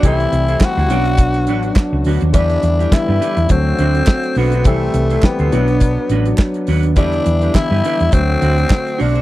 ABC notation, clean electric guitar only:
X:1
M:4/4
L:1/16
Q:"Swing 16ths" 1/4=104
K:Em
V:1 name="Clean electric guitar"
[EAc]2 z [EAc] z [EAc] [DFd]2 z2 [DFB]2 z2 [DFB]2 | [DGB]2 z [DGB] z [DGB] [DGB]2 z2 [DFc]2 z2 [DFc] [DFc] | [EAc]2 z [EAc] z [EAc] [DFd]2 z2 [DFB]2 z2 [DFB]2 | [DGB]2 z [DGB] z [DGB] [DGB]2 z2 [DFc]2 z2 [DFc] [DFc] |]